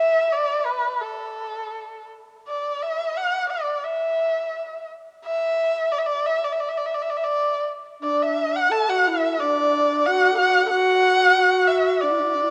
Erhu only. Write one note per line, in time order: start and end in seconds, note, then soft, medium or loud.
0.00 0.34 E5 medium
0.32 0.67 D5 medium
0.65 1.03 B4 medium
1.01 2.08 A4 medium
2.48 2.84 D5 medium
2.82 3.18 E5 medium
3.17 3.49 F#5 medium
3.50 3.86 D5 medium
3.84 4.88 E5 medium
5.25 5.93 E5 medium
5.92 6.00 D5 medium
5.98 6.08 E5 medium
6.06 6.27 D5 medium
6.26 6.46 E5 medium
6.44 6.54 D5 medium
6.52 6.61 E5 medium
6.60 6.70 D5 medium
6.69 6.79 E5 medium
6.77 6.87 D5 medium
6.86 6.96 E5 medium
6.94 7.03 D5 medium
7.02 7.11 E5 medium
7.10 7.18 D5 medium
7.17 7.26 E5 medium
7.24 7.66 D5 medium
8.03 8.24 D5 medium
8.23 8.58 E5 medium
8.56 8.73 F#5 medium
8.72 8.91 A5 medium
8.90 9.08 F#5 medium
9.07 9.41 E5 medium
9.39 10.07 D5 medium
10.06 10.37 F#5 medium
10.38 10.68 F#5 loud
10.69 11.69 F#5 loud
11.67 12.02 E5 medium
12.00 12.50 D5 medium